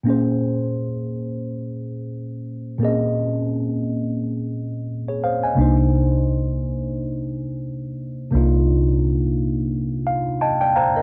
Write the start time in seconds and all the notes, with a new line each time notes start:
0.03 A#2 A#3 C#4
0.09 G#4 C5
2.78 A#2 A#3 C4
2.83 G#4 D#5
2.88 C#4
5.08 G#4 C#5
5.24 C5 F5
5.43 D#5 G#5
5.55 C2 C3 A#3 D4
5.60 D#4 C5
8.31 C2 C3 A#3 D4
8.36 D#4 F4
10.07 F5
10.41 D#5 G5 A5
10.61 D5 G5
10.76 C5 F5 A#5
10.96 A#4 D#5